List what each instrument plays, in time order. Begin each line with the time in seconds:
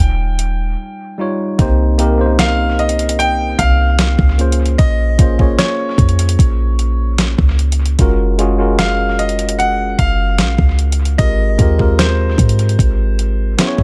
Already playing: tine electric piano G3 D#4 F4 C#5, grand piano G5
0.00 808-style bass D#1, closed hi-hat
0.39 closed hi-hat
1.18 tine electric piano G3 D#4 F4 C#5
1.58 808-style bass C2, tine electric piano A#3 C4 D#4 G4 C5, kick, closed hi-hat
1.98 tine electric piano A#3 C4 D#4 G4 A#4, closed hi-hat
2.18 tine electric piano A#3 C4 C#4 G4 C5
2.26 tine electric piano D#4
2.39 grand piano F5, snare, closed hi-hat
2.79 grand piano D#5, closed hi-hat
2.89 closed hi-hat
2.99 closed hi-hat
3.09 closed hi-hat
3.19 grand piano G5, closed hi-hat
3.59 808-style bass C2, grand piano F5, kick, closed hi-hat
3.99 snare, closed hi-hat
4.19 808-style bass C#2, kick
4.38 tine electric piano A#3 C#4 F4 G#4 C5, closed hi-hat
4.52 closed hi-hat
4.66 closed hi-hat
4.78 808-style bass A#1, grand piano D#5, kick, closed hi-hat
5.18 808-style bass A#1, tine electric piano A#3 C#4 F4 G#4 C5, kick, closed hi-hat
5.38 tine electric piano A#3 C#4 F4 G#4 C#5, kick
5.58 grand piano C#5, snare, closed hi-hat
5.98 808-style bass F2, kick, closed hi-hat
6.09 closed hi-hat
6.19 closed hi-hat
6.29 closed hi-hat
6.39 808-style bass A#1, kick, closed hi-hat
6.79 closed hi-hat
7.18 snare, closed hi-hat
7.38 808-style bass C#2, kick
7.59 closed hi-hat
7.72 closed hi-hat
7.86 closed hi-hat
7.98 808-style bass F#1, tine electric piano G#3 C#4 F4 F#4 A#4, kick, closed hi-hat
8.38 tine electric piano G#3 C#4 F4 F#4 G#4, closed hi-hat
8.58 tine electric piano G#3 C#4 F4 F#4 A#4
8.79 grand piano F5, snare, closed hi-hat
9.19 grand piano D#5, closed hi-hat
9.29 closed hi-hat
9.39 closed hi-hat
9.49 closed hi-hat
9.59 grand piano F#5, closed hi-hat
9.99 808-style bass F#1, grand piano F5, kick, closed hi-hat
10.38 808-style bass A#1, snare, closed hi-hat
10.58 808-style bass C#2, kick
10.79 closed hi-hat
10.92 closed hi-hat
11.05 closed hi-hat
11.18 808-style bass G#1, tine electric piano G#3 C4 F4 G4 A#4, grand piano D#5, kick, closed hi-hat
11.58 808-style bass D#2, tine electric piano G#3 C4 F4 G4 A#4, kick, closed hi-hat
11.78 tine electric piano G#3 C4 F4 G4 A#4, kick
11.99 grand piano C5, snare, closed hi-hat
12.38 808-style bass G#2, kick, closed hi-hat
12.49 closed hi-hat
12.59 closed hi-hat
12.69 closed hi-hat
12.79 808-style bass G#1, kick, closed hi-hat
13.19 closed hi-hat
13.58 tine electric piano B3 C#4 E4 G#4 C5, snare, closed hi-hat
13.67 tine electric piano C#5
13.78 808-style bass C#2, kick